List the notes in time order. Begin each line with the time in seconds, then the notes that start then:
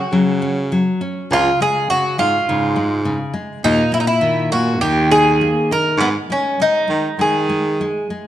Already playing: C#4 F#4
0.12 C#3 F#3
0.42 C#4
0.72 F#3
1.01 C#4
1.31 C#2 C#3 F4
1.60 G#3 G#4
1.90 C#3 F#4
2.18 G#2 G#3 F4
2.49 G#2 C#3
2.76 G#3
3.05 C#3
3.34 G#3
3.64 D#2 A#2 D#4
3.92 A#3 E4
4.00 D#4
4.07 E4
4.21 D#3
4.50 A#2 A#3 F#4
4.80 D#2 D#3 G4
5.11 D#4 G#4
5.41 A#3
5.71 D#4 A#4
5.97 G#2 G#3 B3
6.30 G#3 C#4
6.60 G#3 D#4
6.88 D#3 G#3
7.18 D#3 G#3 G#4
7.49 G#3
7.81 G#3
8.10 G#3